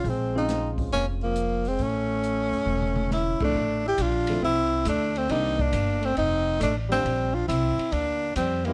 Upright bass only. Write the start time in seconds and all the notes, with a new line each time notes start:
0.04 A#1
0.92 F1
1.79 A1
2.51 G1
2.66 E1
3.40 muted upright bass stroke
3.54 A1
3.98 A#1
4.42 C2
4.85 D2
5.30 C2
5.73 G1
6.17 F1
6.61 A1
7.05 A#1
7.48 C2
7.92 D2
8.36 F2